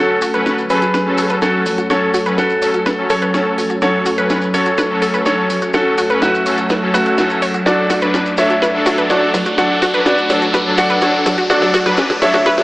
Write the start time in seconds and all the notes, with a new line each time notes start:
Already playing: F#2 F#3 A3 C#4 F#4 A4, riser
0.21 F#4, open hi-hat, maracas
0.34 F#3 C#4 B4, closed hi-hat, maracas
0.46 C#4, snare, closed hi-hat, maracas
0.58 maracas
0.70 F#3 C#4 G#4 A4 B4 C#5, open hi-hat, maracas
0.82 F#4, closed hi-hat, maracas
0.94 B4, snare, closed hi-hat, maracas
1.06 F#3 C#4 A4
1.18 A4, open hi-hat, maracas
1.30 B4, closed hi-hat, maracas
1.42 F#3 C#4 F#4 A4 C#5, snare, closed hi-hat, maracas
1.66 F#3, open hi-hat, maracas
1.78 F#4, closed hi-hat, maracas
1.90 F#3 C#4 F#4 A4 C#5, snare, closed hi-hat, maracas
2.14 F#4, open hi-hat, maracas
2.26 F#3 C#4 B4, closed hi-hat, maracas
2.38 C#4 F#4 A4, snare, closed hi-hat, maracas
2.50 maracas
2.62 F#3 C#4 A4 C#5, open hi-hat, maracas
2.74 F#4, closed hi-hat, maracas
2.86 B4, snare, closed hi-hat, maracas
2.98 F#3 C#4 A4
3.10 A4 C#5, open hi-hat, maracas
3.22 B4, closed hi-hat, maracas
3.34 F#3 C#4 A4 C#5, snare, closed hi-hat, maracas
3.58 F#3, open hi-hat, maracas
3.70 F#4, closed hi-hat, maracas
3.82 F#3 C#4 F#4 A4 C#5, snare, closed hi-hat, maracas
4.06 F#4, open hi-hat, maracas
4.18 F#3 C#4 B4, closed hi-hat, maracas
4.30 C#4, snare, closed hi-hat, maracas
4.41 maracas
4.54 F#3 C#4 A4 C#5, open hi-hat, maracas
4.66 F#4, closed hi-hat, maracas
4.78 B4, snare, closed hi-hat, maracas
4.90 F#3 C#4 A4
5.02 A4, open hi-hat, maracas
5.14 B4, closed hi-hat, maracas
5.25 F#3 C#4 A4 C#5, snare, closed hi-hat, maracas
5.50 F#3, open hi-hat, maracas
5.62 F#4, closed hi-hat, maracas
5.73 F#3 C#4 F#4 A4, snare, closed hi-hat, maracas
5.98 F#4, open hi-hat, maracas
6.10 F#3 C#4 B4, closed hi-hat, maracas
6.22 A3 C#4 F#4, snare, closed hi-hat, maracas
6.35 maracas
6.46 F#3 C#4 A4 C#5, open hi-hat, maracas
6.57 F#4, closed hi-hat, maracas
6.69 B4, snare, closed hi-hat, maracas
6.82 F#3 C#4 A4
6.94 A3 F#4 B4, open hi-hat, maracas
7.06 F#5, closed hi-hat, maracas
7.18 F#3 C#4 F#4 A4, snare, closed hi-hat, maracas
7.30 maracas
7.42 C#5, open hi-hat, maracas
7.54 F#4, closed hi-hat, maracas
7.66 F#3 D4 F#4 A4 D5, snare, closed hi-hat, maracas
7.90 F#4, snare, open hi-hat, maracas
8.01 F#3 D4 B4, closed hi-hat, maracas
8.14 C#4, snare, closed hi-hat, maracas
8.26 maracas
8.37 F#3 D4 A4 C#5 E5, snare, open hi-hat, maracas
8.50 F#4, closed hi-hat, maracas
8.62 B4, snare, closed hi-hat, maracas
8.74 F#3 D4 A4
8.86 F#4, snare, open hi-hat, maracas
8.98 B4, closed hi-hat, maracas
9.10 F#3 D4 F#4 A4 C#5 D5, snare, closed hi-hat, maracas
9.34 F#3, snare, open hi-hat, maracas
9.46 F#4, closed hi-hat, maracas
9.58 F#3 D4 F#4 A4 D5 F#5, snare, closed hi-hat, maracas
9.82 F#4, snare, open hi-hat, maracas
9.94 F#3 D4 B4, closed hi-hat, maracas
10.06 C#4 F#4 D5, snare, closed hi-hat, maracas
10.18 maracas
10.30 F#3 D4 A4 C#5, snare, open hi-hat, maracas
10.42 F#4, closed hi-hat, maracas
10.54 B4, snare, closed hi-hat, maracas
10.66 F#3 D4 A4
10.78 F#4 D5 F#5, snare, open hi-hat, maracas
10.90 B4, closed hi-hat, maracas
11.01 F#3 D4 A4 C#5, snare, closed hi-hat, maracas
11.26 F#3, snare, open hi-hat, maracas
11.38 F#4, closed hi-hat, maracas
11.50 F#3 D4 F#4 A4 D5, snare, closed hi-hat, maracas
11.62 snare
11.74 F#4, snare, open hi-hat, maracas
11.86 F#3 D4 B4, snare, closed hi-hat, maracas
11.97 C#4, snare, closed hi-hat, maracas
12.10 snare, maracas
12.22 F#3 D4 A4 C#5 E5, snare, open hi-hat, maracas
12.34 F#4, snare, closed hi-hat, maracas
12.45 B4, snare, closed hi-hat, maracas
12.58 F#3 D4 A4, snare